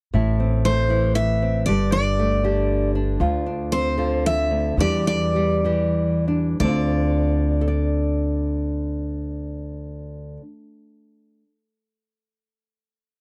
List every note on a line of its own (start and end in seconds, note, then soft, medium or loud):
0.13 1.64 A1 medium
0.13 1.66 A2 medium
0.13 0.89 E4 medium
0.40 1.41 C4 soft
0.65 1.71 A3 soft
0.65 1.12 C5 medium
0.90 1.63 E3 medium
0.90 1.64 E4 soft
1.15 1.65 E5 medium
1.42 1.64 C4 soft
1.66 3.17 G1 medium
1.66 3.17 G2 medium
1.66 2.43 G4 medium
1.66 1.91 D5 medium
1.92 2.95 D4 soft
1.92 2.90 D5 medium
2.19 3.17 A3 soft
2.44 3.96 D3 medium
2.44 3.17 G4 medium
2.95 3.46 D4 medium
3.20 4.50 D2 medium
3.20 4.75 D2 medium
3.20 3.97 F4 medium
3.46 4.80 D4 soft
3.72 4.75 C4 medium
3.72 4.26 C5 medium
3.98 4.78 D3 medium
3.98 4.75 F4 medium
4.26 4.76 E5 medium
4.51 4.78 D2 soft
4.77 6.57 E2 medium
4.77 5.63 E3 medium
4.77 5.35 G3 medium
4.77 5.06 D4 medium
4.77 5.64 G4 medium
4.77 5.06 D5 medium
5.07 6.26 D4 soft
5.07 6.24 D5 medium
5.36 6.61 G3 medium
5.64 6.56 E3 medium
5.64 6.57 G4 medium
6.28 6.57 D4 soft
6.60 10.41 D2 medium
6.60 10.37 D2 medium
6.60 10.43 D3 medium
6.60 10.44 C4 medium
6.60 10.37 D5 medium
6.66 7.61 D4 soft
6.66 7.67 F4 medium
7.61 11.42 A4 medium
7.68 11.48 D5 medium